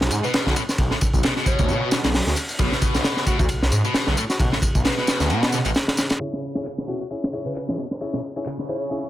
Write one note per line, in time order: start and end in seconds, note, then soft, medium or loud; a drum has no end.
0.01 0.09 B1 medium
0.01 snare medium
0.11 0.21 G#2 medium
0.11 ride medium
0.11 tambourine medium
0.24 0.45 B2 medium
0.24 0.30 B4 medium
0.24 tambourine soft
0.34 0.42 B4 medium
0.34 snare loud
0.34 ride medium
0.34 tambourine soft
0.46 0.54 B1 medium
0.46 0.53 D3 loud
0.46 snare medium
0.56 0.62 A2 medium
0.56 ride medium
0.56 tambourine medium
0.69 snare soft
0.69 tambourine soft
0.78 0.88 B1 loud
0.78 kick medium
0.78 ride medium
0.78 tambourine soft
0.91 0.96 A2 medium
0.91 snare soft
1.01 kick loud
1.01 ride medium
1.01 tambourine medium
1.13 1.21 B1 medium
1.13 kick medium
1.13 tambourine soft
1.23 1.33 B2 medium
1.23 snare loud
1.23 ride medium
1.23 tambourine soft
1.36 1.68 B2 medium
1.36 snare soft
1.46 1.92 C#5 medium
1.46 kick loud
1.46 ride medium
1.46 tambourine medium
1.59 1.70 D2 medium
1.59 kick loud
1.59 tambourine soft
1.69 1.99 B2 loud
1.69 1.81 B2 medium
1.69 tambourine soft
1.82 1.89 B2 loud
1.91 1.97 D3 medium
1.91 snare loud
1.91 ride medium
1.91 tambourine medium
2.04 2.21 B1 loud
2.04 2.09 B2 loud
2.04 snare loud
2.04 ride medium
2.04 tambourine soft
2.14 snare loud
2.14 open hi-hat medium
2.14 tambourine soft
2.27 2.34 D2 medium
2.27 snare soft
2.36 ride medium
2.36 tambourine medium
2.49 tambourine soft
2.59 2.69 B1 loud
2.59 2.93 B2 loud
2.59 kick loud
2.59 ride medium
2.59 tambourine soft
2.72 snare soft
2.82 kick medium
2.82 ride medium
2.82 tambourine medium
2.94 3.02 B1 medium
2.94 3.26 B2 medium
2.94 snare medium
2.94 tambourine soft
3.04 snare loud
3.04 ride medium
3.04 tambourine soft
3.17 snare soft
3.27 3.39 A2 medium
3.27 3.35 F#4 medium
3.27 kick medium
3.27 ride medium
3.27 tambourine medium
3.39 3.47 D2 medium
3.39 3.46 F#4 medium
3.39 kick loud
3.39 tambourine soft
3.49 3.60 B1 soft
3.49 ride medium
3.49 tambourine soft
3.62 3.70 B1 medium
3.62 snare medium
3.72 3.82 G#2 medium
3.72 ride medium
3.72 tambourine medium
3.85 4.06 B2 medium
3.85 tambourine soft
3.94 snare loud
3.94 ride medium
3.94 tambourine soft
4.07 4.15 B1 medium
4.07 4.15 D3 loud
4.07 snare soft
4.17 4.23 A2 medium
4.17 ride medium
4.17 tambourine medium
4.30 4.36 F#4 medium
4.30 snare soft
4.30 tambourine soft
4.40 4.49 B1 loud
4.40 4.48 F#4 medium
4.40 kick loud
4.40 ride medium
4.40 tambourine soft
4.52 4.57 A2 medium
4.52 snare soft
4.62 kick medium
4.62 ride medium
4.62 tambourine medium
4.75 4.83 B1 medium
4.75 kick medium
4.75 tambourine soft
4.85 4.94 B2 medium
4.85 5.30 B4 medium
4.85 snare loud
4.85 ride medium
4.85 tambourine soft
4.97 5.28 B2 medium
4.97 snare soft
5.07 snare loud
5.07 ride medium
5.07 tambourine medium
5.20 5.32 D2 medium
5.20 snare soft
5.20 tambourine soft
5.30 5.41 B2 medium
5.30 5.60 B2 medium
5.30 ride medium
5.30 tambourine soft
5.43 5.50 B2 loud
5.43 snare loud
5.43 ride medium
5.52 5.58 D3 medium
5.52 snare soft
5.52 tambourine medium
5.65 5.73 A1 medium
5.65 5.69 B2 loud
5.65 ride medium
5.65 tambourine soft
5.74 snare loud
5.74 ride medium
5.74 tambourine soft
5.88 snare loud
5.88 ride medium
5.97 snare medium
5.97 ride medium
5.97 tambourine medium
6.10 snare loud
6.10 ride medium
6.10 tambourine soft
6.20 6.54 C#3 medium
6.20 6.39 C#4 medium
6.20 6.39 E4 medium
6.20 6.39 G#4 medium
6.20 6.39 C#5 medium
6.20 ride medium
6.33 snare soft
6.43 ride medium
6.55 6.87 C#3 medium
6.55 6.66 C#4 medium
6.55 6.66 E4 medium
6.55 6.66 G#4 medium
6.55 6.66 C#5 medium
6.55 snare soft
6.65 clap loud
6.65 ride medium
6.78 snare soft
6.87 7.00 B2 medium
6.87 7.01 C#4 medium
6.87 7.01 E4 medium
6.87 6.96 F#4 medium
6.87 7.01 G#4 medium
6.87 7.01 C#5 medium
7.00 7.07 F#4 medium
7.10 7.24 C#4 medium
7.10 7.23 E4 medium
7.10 7.23 G#4 medium
7.10 7.23 C#5 medium
7.10 ride medium
7.24 snare medium
7.32 7.52 C#4 medium
7.32 7.52 E4 medium
7.32 7.52 G#4 medium
7.32 7.52 C#5 medium
7.32 ride medium
7.46 7.67 C#3 medium
7.46 7.52 B4 medium
7.55 7.64 B4 medium
7.55 clap medium
7.55 ride medium
7.68 7.75 E3 medium
7.68 7.79 C#4 medium
7.68 7.79 E4 medium
7.68 7.79 G#4 medium
7.68 7.79 C#5 medium
7.68 snare soft
7.78 7.84 B2 medium
7.78 ride medium
7.91 snare soft
8.01 8.20 C#4 medium
8.01 8.20 E4 medium
8.01 8.20 G#4 medium
8.01 8.20 C#5 medium
8.01 ride medium
8.13 8.18 B2 medium
8.13 snare soft
8.24 ride medium
8.36 8.46 C#4 medium
8.36 8.46 E4 medium
8.36 8.46 G#4 medium
8.36 8.46 C#5 medium
8.45 8.55 C#3 medium
8.45 clap loud
8.45 ride medium
8.59 8.90 C#3 medium
8.59 snare soft
8.69 8.81 C#4 medium
8.69 8.81 E4 medium
8.69 8.81 G#4 medium
8.69 8.81 C#5 medium
8.69 9.10 C#5 medium
8.69 ride medium
8.91 9.02 C#3 medium
8.91 9.04 C#4 medium
8.91 9.04 E4 medium
8.91 9.04 G#4 medium
8.91 9.04 C#5 medium
9.04 9.10 C#3 medium